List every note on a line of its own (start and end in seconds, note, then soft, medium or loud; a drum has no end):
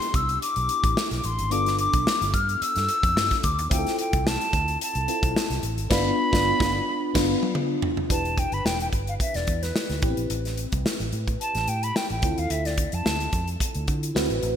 0.00 1.47 B3 medium
0.00 1.47 D4 medium
0.00 1.48 E4 medium
0.00 1.51 G4 medium
0.00 0.17 C6 loud
0.00 closed hi-hat medium
0.14 0.37 C2 medium
0.14 0.42 E6 medium
0.14 kick loud
0.14 closed hi-hat medium
0.29 closed hi-hat soft
0.42 1.18 D6 loud
0.42 closed hi-hat medium
0.56 0.67 B1 medium
0.56 closed hi-hat soft
0.69 closed hi-hat medium
0.84 0.94 A1 medium
0.84 kick loud
0.84 closed hi-hat medium
0.97 snare loud
1.11 1.22 B1 medium
1.11 snare soft
1.11 closed hi-hat medium
1.18 1.27 D6 medium
1.24 1.41 A1 medium
1.24 1.53 C6 medium
1.24 closed hi-hat medium
1.39 1.52 G#1 medium
1.39 closed hi-hat medium
1.50 1.86 G1 loud
1.50 3.66 B3 medium
1.50 3.67 D4 medium
1.50 3.67 F4 medium
1.50 3.68 A4 medium
1.50 1.79 D6 loud
1.50 closed hi-hat medium
1.66 snare soft
1.66 closed hi-hat soft
1.79 2.36 D6 loud
1.79 closed hi-hat medium
1.93 2.04 B1 medium
1.93 kick medium
1.93 closed hi-hat medium
2.07 snare loud
2.21 2.32 G1 loud
2.21 closed hi-hat medium
2.34 2.56 G2 medium
2.34 2.63 F6 loud
2.34 kick medium
2.34 closed hi-hat medium
2.49 closed hi-hat soft
2.62 3.45 E6 loud
2.62 muted fingered electric bass stroke soft
2.62 closed hi-hat medium
2.76 2.87 G2 loud
2.76 snare soft
2.76 closed hi-hat soft
2.89 closed hi-hat medium
3.03 3.16 F2 medium
3.03 kick loud
3.03 closed hi-hat medium
3.16 3.28 G2 loud
3.16 snare loud
3.31 kick medium
3.31 snare soft
3.31 closed hi-hat medium
3.43 3.59 D2 loud
3.43 3.71 D6 loud
3.43 kick medium
3.43 closed hi-hat medium
3.59 3.69 D#2 medium
3.59 closed hi-hat medium
3.70 3.83 D2 loud
3.70 5.05 C4 medium
3.70 5.05 E4 medium
3.70 5.06 F4 medium
3.70 3.79 G4 medium
3.70 3.97 G5 medium
3.70 kick loud
3.70 closed hi-hat medium
3.79 5.08 A4 medium
3.87 snare soft
3.87 closed hi-hat soft
3.99 4.29 G5 medium
3.99 closed hi-hat medium
4.13 4.36 C2 medium
4.13 kick medium
4.13 closed hi-hat soft
4.27 4.81 A5 medium
4.27 snare loud
4.41 closed hi-hat medium
4.53 4.76 D2 medium
4.53 kick medium
4.53 closed hi-hat medium
4.68 closed hi-hat soft
4.81 5.61 A5 medium
4.81 closed hi-hat medium
4.95 5.06 C2 medium
4.95 closed hi-hat soft
5.08 5.91 C4 medium
5.08 5.91 E4 soft
5.08 5.90 F4 soft
5.08 5.91 A4 medium
5.08 closed hi-hat medium
5.23 5.33 B1 medium
5.23 kick loud
5.23 closed hi-hat medium
5.36 snare loud
5.50 5.61 C2 loud
5.50 snare soft
5.50 closed hi-hat soft
5.63 5.75 A1 medium
5.63 closed hi-hat medium
5.77 5.88 G#1 medium
5.77 closed hi-hat medium
5.90 6.10 G1 loud
5.90 6.09 B3 loud
5.90 6.10 D4 loud
5.90 6.10 F4 loud
5.90 7.52 B5 loud
5.90 kick loud
5.90 snare loud
5.90 crash medium
6.32 6.51 G1 loud
6.32 6.51 B3 medium
6.32 6.51 D4 loud
6.32 6.51 F4 loud
6.32 kick loud
6.32 snare loud
6.59 6.79 G1 loud
6.59 6.78 B3 medium
6.59 6.78 D4 medium
6.59 6.79 F4 medium
6.59 kick loud
6.59 snare loud
7.14 7.33 G1 loud
7.14 7.33 B3 loud
7.14 7.33 D4 medium
7.14 7.34 F4 loud
7.14 kick loud
7.14 snare loud
7.14 crash medium
7.43 high tom medium
7.55 mid tom medium
7.82 floor tom loud
7.97 floor tom medium
8.09 8.45 E1 loud
8.09 9.98 D4 medium
8.09 9.99 E4 medium
8.09 9.99 G4 medium
8.09 10.00 B4 medium
8.09 8.41 A5 medium
8.09 kick loud
8.09 closed hi-hat medium
8.25 closed hi-hat soft
8.38 8.55 G5 medium
8.38 kick medium
8.38 closed hi-hat medium
8.52 8.63 G1 medium
8.52 8.67 B5 medium
8.52 closed hi-hat soft
8.65 8.88 E1 loud
8.65 8.80 G5 medium
8.65 snare loud
8.80 8.88 G5 medium
8.80 closed hi-hat soft
8.93 9.15 G1 medium
8.93 kick medium
8.93 closed hi-hat medium
9.07 9.14 F5 medium
9.07 closed hi-hat soft
9.20 9.37 E5 medium
9.20 kick medium
9.20 closed hi-hat medium
9.34 9.45 E1 medium
9.34 9.64 D5 medium
9.34 snare soft
9.34 closed hi-hat soft
9.47 9.70 E2 medium
9.47 kick medium
9.47 closed hi-hat medium
9.63 10.18 B4 medium
9.63 snare soft
9.63 closed hi-hat medium
9.76 snare loud
9.89 10.00 D2 medium
9.89 snare soft
9.89 closed hi-hat soft
10.02 10.15 A1 medium
10.02 10.09 B3 soft
10.02 12.19 E4 medium
10.02 12.19 G4 medium
10.02 12.19 B4 medium
10.02 kick loud
10.02 closed hi-hat medium
10.08 12.21 C4 medium
10.17 10.28 A#1 medium
10.17 closed hi-hat medium
10.30 10.65 A1 medium
10.30 closed hi-hat medium
10.45 snare soft
10.45 closed hi-hat soft
10.57 closed hi-hat medium
10.72 10.83 C2 medium
10.72 kick medium
10.72 closed hi-hat soft
10.86 snare loud
11.00 11.10 A1 medium
11.00 closed hi-hat soft
11.12 11.35 A2 medium
11.12 closed hi-hat medium
11.27 kick medium
11.27 closed hi-hat soft
11.41 11.70 A5 loud
11.41 closed hi-hat medium
11.55 11.65 A1 loud
11.55 snare soft
11.55 closed hi-hat soft
11.68 11.90 A2 medium
11.68 11.85 G5 loud
11.68 closed hi-hat medium
11.83 11.98 B5 medium
11.83 closed hi-hat medium
11.96 12.11 G5 medium
11.96 snare loud
12.10 12.21 A1 medium
12.10 12.40 G5 medium
12.10 closed hi-hat soft
12.22 12.35 D2 loud
12.22 14.11 C4 medium
12.22 14.11 E4 medium
12.22 14.12 F4 medium
12.22 14.12 A4 medium
12.22 kick loud
12.22 closed hi-hat medium
12.38 12.48 D#2 medium
12.38 12.52 F5 medium
12.38 closed hi-hat medium
12.50 12.85 D2 medium
12.50 12.68 E5 loud
12.50 closed hi-hat medium
12.65 12.96 D5 medium
12.65 snare soft
12.65 closed hi-hat soft
12.78 kick loud
12.78 closed hi-hat medium
12.92 13.03 F2 medium
12.92 13.48 A5 medium
12.92 closed hi-hat soft
13.05 13.28 D2 medium
13.05 snare loud
13.20 closed hi-hat medium
13.33 13.55 F2 medium
13.33 kick medium
13.33 closed hi-hat medium
13.48 closed hi-hat soft
13.60 kick medium
13.60 closed hi-hat medium
13.74 13.86 D2 loud
13.74 closed hi-hat soft
13.88 14.10 D3 loud
13.88 kick medium
13.88 closed hi-hat medium
14.03 closed hi-hat medium
14.15 14.27 D2 medium
14.15 14.56 C4 medium
14.15 14.56 E4 medium
14.15 14.56 F#4 medium
14.15 14.56 B4 medium
14.15 snare loud
14.30 14.41 A1 medium
14.30 closed hi-hat soft
14.43 14.55 A1 loud
14.43 closed hi-hat medium